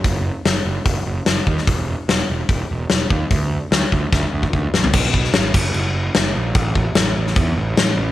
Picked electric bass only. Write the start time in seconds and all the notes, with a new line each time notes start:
0.05 F#1
0.45 F#1
0.65 F#1
0.86 F#1
1.06 F#1
1.26 F#1
1.47 D#2
1.67 E1
2.08 E1
2.30 E1
2.49 E1
2.71 E1
2.92 E1
3.10 D#2
3.31 D2
3.71 D2
3.92 D2
4.12 D2
4.33 D2
4.54 D2
4.73 A1
4.94 B1
5.35 G#1
5.54 F#1
5.74 F#1
6.15 F#1
6.35 A#1
6.55 A1
6.95 A1
7.16 A1
7.36 E2
7.56 A1
7.77 A1
7.97 A1